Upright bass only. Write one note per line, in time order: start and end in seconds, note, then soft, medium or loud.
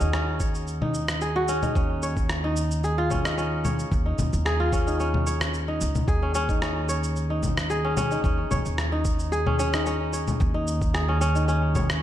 0.01 1.69 D#2 medium
1.76 3.85 D#2 medium
3.92 4.11 D#2 medium
4.19 4.29 D#2 medium
4.33 5.81 D#2 medium
5.81 6.00 C#2 medium
6.08 8.18 D#2 medium
8.24 8.43 D#2 medium
8.52 8.61 D#2 medium
8.66 10.34 D#2 medium
10.40 12.03 D#2 loud